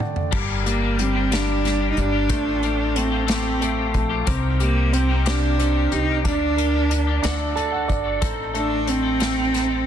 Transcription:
Already playing: A3 F#5 G5
0.00 D3 D5, mid tom
0.16 floor tom
0.31 G1 G2 D3 G3 A#3 D4 G4, kick, crash
0.65 G3 A#3 D4 G4, closed hi-hat
0.81 G3 A#3 D4 G4
0.99 G3 C4, closed hi-hat
1.15 G3 A#3 D4 G4
1.31 G2 D3 G3 A#3 D4 G4, snare, closed hi-hat
1.63 G3 A#3 D4 G4, snare, closed hi-hat
1.80 G3 A#3 D4 G4
1.90 D#4
1.97 G1 G3 D4, closed hi-hat
2.13 G3 A#3 D4 G4
2.29 A1 A3 C4 F4 G4, kick, closed hi-hat
2.62 A3 C4 F4 G4, closed hi-hat
2.78 C4 F4 G4
2.96 A3 C4, closed hi-hat
3.11 C4 F4 G4
3.27 A3 C4 F4 G4, snare, closed hi-hat
3.60 A3 C4 F4 G4, closed hi-hat
3.77 C4 F4 G4
3.94 A#1 A3, kick, closed hi-hat
4.09 C4 F4 G4
4.26 C2 C3 G3 A#3 C4 D#4 G4, kick, closed hi-hat
4.60 G3 A#3 D#4 G4, closed hi-hat
4.76 A#3 D#4 G4
4.93 C4, closed hi-hat
5.09 A#3 D#4 G4
5.25 C3 G3 A#3 D4 G4, snare, closed hi-hat
5.58 G3 A#3 C4 D#4 G4, closed hi-hat
5.75 A#3 D#4 G4
5.92 C2 D#4 G4, closed hi-hat
6.09 A#3 D#4 G4
6.24 D2 D3 G3 A#3 D4 G4, kick, closed hi-hat
6.57 G3 A#3 D4 G4 A#4, closed hi-hat
6.75 A#3 D4 G4
6.90 D4, closed hi-hat
7.07 A#3 D4 G4
7.22 D2 D3 A3 D4 F#4 A4, snare, closed hi-hat
7.55 A3 D4 F#4 A4 A5, closed hi-hat
7.72 D4 F#4 A4 F#5
7.88 G1 D4 D5, kick, closed hi-hat
8.04 D4 F#4 A4
8.21 A1 A3 C4 D#4 A4, kick, closed hi-hat
8.54 A3 C4 D4 D#4 A4, closed hi-hat
8.69 C4 D#4 A4
8.87 C4, closed hi-hat
9.03 C4 D#4 A4
9.20 A3 C4 D#4 A4, snare, closed hi-hat
9.53 A3 C4 D#4 A4, snare, closed hi-hat
9.68 C4 D#4 A4

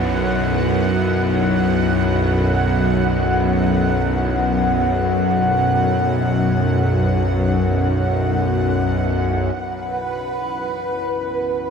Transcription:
Already playing: B1 F#2 C#4 E4 B4 F#5
9.54 B1 F#2 B4

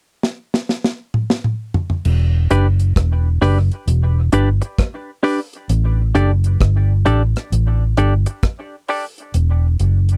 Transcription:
0.23 snare
0.54 snare
0.69 snare
0.84 snare
1.14 mid tom
1.30 snare
1.44 mid tom
1.74 floor tom
1.90 floor tom
2.05 E1, crash
2.50 F#1 D4 G4 B4 D5, closed hi-hat
2.79 closed hi-hat
2.96 E1, kick, cross-stick, closed hi-hat
3.42 F#1 D4 G4 B4 D5, cross-stick, open hi-hat
3.71 closed hi-hat
3.87 E1, closed hi-hat
4.32 G1 D4 G4 B4 D5, closed hi-hat
4.61 muted clean electric guitar stroke, closed hi-hat
4.79 kick, cross-stick, closed hi-hat
5.23 D4 G4 B4 D5, open hi-hat
5.53 closed hi-hat
5.69 A1, closed hi-hat
6.15 F#1 D4 G4 A4 D5, closed hi-hat
6.44 closed hi-hat
6.61 G1, kick, cross-stick, closed hi-hat
7.06 A1 D4 G4 A4 D5, closed hi-hat
7.36 cross-stick, closed hi-hat
7.52 A1, closed hi-hat
7.97 G1 D4 G4 A4 D5, closed hi-hat
8.26 muted clean electric guitar stroke, closed hi-hat
8.43 kick, cross-stick, closed hi-hat
8.88 D4 G4 A4 D5, open hi-hat
9.18 closed hi-hat
9.34 E1, closed hi-hat
9.79 F#1, closed hi-hat
10.09 closed hi-hat

